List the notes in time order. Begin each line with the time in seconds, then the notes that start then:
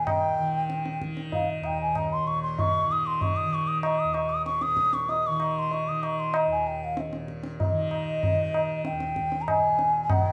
Already playing: D#2 A#2 D#3
0.04 G5, tabla na, tabla ge
0.39 D#3
0.70 tabla te
0.86 tabla te
1.01 D#3, tabla ke
1.17 tabla te
1.32 F5, tabla tin, tabla ge
1.50 D#5
1.61 D#2, tabla na
1.65 G5
1.82 G#5
1.95 A#5, tabla na, tabla ge
2.13 C6
2.24 A#2 C#6
2.43 C6
2.59 C#6, tabla tin, tabla ge
2.84 D#3
2.92 D#6
3.06 C6
3.21 C#6, tabla tin, tabla ge
3.36 D#6
3.44 D#3
3.54 C#6
3.68 D#6
3.82 C#6, tabla na
3.99 D#6
4.04 D#2
4.14 C#6, tabla na
4.29 D#6
4.46 C#6, tabla te
4.61 D#6, tabla te
4.67 A#2
4.77 tabla ke
4.93 C#6, tabla te
5.09 D#6, tabla tin
5.27 D#3 C#6
5.40 tabla na
5.59 C6
5.71 C#6, tabla tin
5.88 D#3 D#6
6.03 C#6, tabla na
6.19 C6
6.34 A#5, tabla na
6.47 D#2
6.51 G#5
6.67 G5
6.84 F5
6.97 D#5, tabla te
7.09 A#2, tabla te
7.28 tabla ke
7.44 tabla te
7.60 D#5, tabla tin, tabla ge
7.70 D#3
7.91 tabla na
8.23 tabla tin, tabla ge
8.31 D#3
8.54 tabla na
8.85 G5, tabla te
8.92 D#2
9.00 tabla te
9.16 tabla ke
9.32 tabla te
9.41 A#5
9.48 G#5, tabla na, tabla ge
9.56 A#2
9.79 tabla te
10.03 G#5
10.10 A#2 G5, tabla na, tabla ge